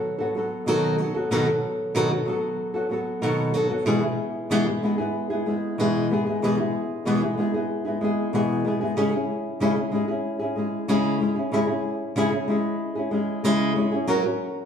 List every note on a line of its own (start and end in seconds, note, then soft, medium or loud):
0.00 0.21 F#3 soft
0.00 0.20 B3 soft
0.00 0.19 F#4 soft
0.00 0.17 A4 medium
0.18 0.34 F#3 soft
0.18 0.35 B3 medium
0.18 0.36 F#4 medium
0.18 0.35 A4 medium
0.35 0.66 F#3 medium
0.35 0.67 B3 medium
0.35 0.67 F#4 medium
0.35 0.67 A4 medium
0.66 0.99 B2 medium
0.66 1.00 D#3 medium
0.66 0.97 F#3 medium
0.66 0.98 B3 medium
0.66 1.00 F#4 loud
0.66 1.00 A4 loud
0.98 1.15 F#3 medium
0.98 1.16 B3 medium
0.98 1.15 F#4 medium
0.98 1.13 A4 medium
1.14 1.31 F#3 soft
1.14 1.31 B3 soft
1.14 1.32 F#4 medium
1.14 1.31 A4 medium
1.31 1.47 B2 medium
1.31 1.48 D#3 medium
1.31 1.48 F#3 medium
1.31 1.48 B3 medium
1.31 1.46 F#4 medium
1.31 1.45 A4 medium
1.46 1.94 F#3 soft
1.46 1.95 B3 soft
1.46 1.95 F#4 soft
1.46 1.95 A4 medium
1.95 2.11 B2 medium
1.95 2.12 D#3 medium
1.95 2.12 F#3 medium
1.95 2.11 B3 medium
1.95 2.10 F#4 medium
1.95 2.09 A4 medium
2.10 2.25 F#3 soft
2.10 2.26 B3 soft
2.10 2.27 F#4 medium
2.10 2.27 A4 medium
2.26 2.75 F#3 medium
2.26 2.75 B3 medium
2.26 2.74 F#4 medium
2.26 2.73 A4 medium
2.74 2.88 F#3 soft
2.74 2.90 B3 medium
2.74 2.91 F#4 medium
2.74 2.91 A4 medium
2.90 3.21 F#3 medium
2.90 3.22 B3 medium
2.90 3.22 F#4 medium
2.90 3.23 A4 medium
3.22 3.55 B2 medium
3.22 3.55 D#3 medium
3.22 3.52 F#3 medium
3.22 3.54 B3 medium
3.22 3.55 F#4 medium
3.22 3.56 A4 loud
3.54 3.70 F#3 medium
3.54 3.71 B3 medium
3.54 3.70 F#4 medium
3.54 3.68 A4 medium
3.69 3.86 F#3 soft
3.69 3.86 B3 soft
3.69 3.87 F#4 medium
3.69 3.86 A4 medium
3.86 4.02 B2 medium
3.86 4.03 E3 medium
3.86 4.03 G#3 medium
3.86 4.03 B3 medium
3.86 4.02 E4 medium
3.86 4.00 G#4 loud
4.01 4.50 G#3 soft
4.01 4.50 B3 soft
4.01 4.51 E4 medium
4.01 4.50 G#4 medium
4.50 4.66 B2 medium
4.50 4.67 E3 medium
4.50 4.67 G#3 medium
4.50 4.67 B3 loud
4.50 4.66 E4 loud
4.50 4.65 G#4 loud
4.66 4.81 G#3 soft
4.66 4.82 B3 soft
4.66 4.83 E4 soft
4.66 4.83 G#4 medium
4.82 4.99 G#3 medium
4.82 4.99 B3 medium
4.82 4.98 E4 medium
4.82 4.97 G#4 medium
4.98 5.32 G#3 soft
4.98 5.31 B3 soft
4.98 5.30 E4 medium
4.98 5.29 G#4 medium
5.30 5.45 G#3 soft
5.30 5.46 B3 medium
5.30 5.47 E4 medium
5.30 5.46 G#4 medium
5.46 5.78 G#3 medium
5.46 5.79 B3 medium
5.46 5.79 E4 medium
5.46 5.79 G#4 medium
5.78 6.10 B2 medium
5.78 6.11 E3 medium
5.78 6.09 G#3 medium
5.78 6.10 B3 medium
5.78 6.11 E4 medium
5.78 6.12 G#4 medium
6.10 6.26 G#3 medium
6.10 6.27 B3 medium
6.10 6.26 E4 medium
6.10 6.25 G#4 medium
6.26 6.42 G#3 soft
6.26 6.43 B3 soft
6.26 6.43 E4 soft
6.26 6.43 G#4 medium
6.42 6.58 B2 medium
6.42 6.59 E3 medium
6.42 6.59 G#3 loud
6.42 6.59 B3 medium
6.42 6.58 E4 loud
6.42 6.57 G#4 medium
6.58 7.05 G#3 soft
6.58 7.06 B3 soft
6.58 7.06 E4 medium
6.58 7.06 G#4 medium
7.05 7.22 B2 medium
7.05 7.22 E3 medium
7.05 7.22 G#3 medium
7.05 7.23 B3 medium
7.05 7.22 E4 medium
7.05 7.20 G#4 medium
7.22 7.36 G#3 soft
7.22 7.38 B3 soft
7.22 7.39 E4 soft
7.22 7.38 G#4 medium
7.38 7.54 G#3 medium
7.38 7.54 B3 medium
7.38 7.54 E4 medium
7.38 7.52 G#4 medium
7.54 7.87 G#3 soft
7.54 7.86 B3 soft
7.54 7.85 E4 soft
7.54 7.84 G#4 medium
7.85 8.00 G#3 soft
7.85 8.01 B3 medium
7.85 8.02 E4 medium
7.85 8.01 G#4 medium
8.01 8.33 G#3 medium
8.01 8.34 B3 medium
8.01 8.34 E4 medium
8.01 8.34 G#4 medium
8.33 8.65 B2 medium
8.33 8.66 E3 medium
8.33 8.63 G#3 medium
8.33 8.65 B3 medium
8.33 8.66 E4 medium
8.33 8.67 G#4 loud
8.65 8.81 G#3 medium
8.65 8.82 B3 medium
8.65 8.81 E4 medium
8.65 8.80 G#4 medium
8.81 8.96 G#3 soft
8.81 8.97 B3 soft
8.81 8.97 E4 soft
8.81 8.97 G#4 medium
8.97 9.13 C#3 medium
8.97 9.13 G#3 medium
8.97 9.14 C#4 medium
8.97 9.13 E4 medium
8.97 9.11 G#4 loud
9.12 9.60 C#4 soft
9.12 9.61 E4 medium
9.12 9.61 G#4 medium
9.60 9.77 C#3 medium
9.60 9.77 G#3 medium
9.60 9.78 C#4 medium
9.60 9.77 E4 loud
9.60 9.75 G#4 loud
9.76 9.92 C#4 soft
9.76 9.93 E4 soft
9.76 9.93 G#4 soft
9.91 10.08 G#3 medium
9.91 10.09 C#4 medium
9.91 10.08 E4 medium
9.91 10.07 G#4 medium
10.08 10.42 C#4 soft
10.08 10.40 E4 soft
10.08 10.38 G#4 medium
10.39 10.56 C#4 soft
10.39 10.57 E4 medium
10.39 10.56 G#4 medium
10.56 10.88 G#3 medium
10.56 10.88 C#4 medium
10.56 10.89 E4 medium
10.56 10.89 G#4 medium
10.88 11.21 C#3 medium
10.88 11.19 G#3 medium
10.88 11.20 C#4 medium
10.88 11.21 E4 medium
10.88 11.22 G#4 loud
11.20 11.36 G#3 medium
11.20 11.37 C#4 medium
11.20 11.36 E4 medium
11.20 11.34 G#4 medium
11.36 11.52 C#4 soft
11.36 11.52 E4 soft
11.36 11.52 G#4 medium
11.52 11.68 C#3 medium
11.52 11.69 G#3 medium
11.52 11.69 C#4 loud
11.52 11.68 E4 loud
11.52 11.66 G#4 loud
11.67 12.16 C#4 soft
11.67 12.16 E4 medium
11.67 12.16 G#4 medium
12.16 12.32 C#3 medium
12.16 12.33 G#3 medium
12.16 12.33 C#4 loud
12.16 12.32 E4 medium
12.16 12.31 G#4 loud
12.32 12.48 C#4 soft
12.32 12.49 E4 soft
12.32 12.48 G#4 medium
12.48 12.96 G#3 medium
12.48 12.97 C#4 medium
12.48 12.96 E4 medium
12.48 12.94 G#4 medium
12.95 13.11 C#4 soft
12.95 13.12 E4 medium
12.95 13.12 G#4 medium
13.11 13.43 G#3 medium
13.11 13.44 C#4 medium
13.11 13.45 E4 medium
13.11 13.45 G#4 medium
13.44 13.76 C#3 medium
13.44 13.74 G#3 loud
13.44 13.76 C#4 medium
13.44 13.77 E4 medium
13.44 13.77 G#4 loud
13.76 13.92 G#3 medium
13.76 13.92 C#4 medium
13.76 13.92 E4 medium
13.76 13.91 G#4 medium
13.92 14.07 C#4 medium
13.92 14.09 E4 medium
13.92 14.08 G#4 medium
14.07 14.24 F#3 loud
14.07 14.24 C#4 medium
14.07 14.24 F#4 medium
14.07 14.22 A#4 loud
14.23 14.65 C#4 soft
14.23 14.65 F#4 medium
14.23 14.65 A#4 medium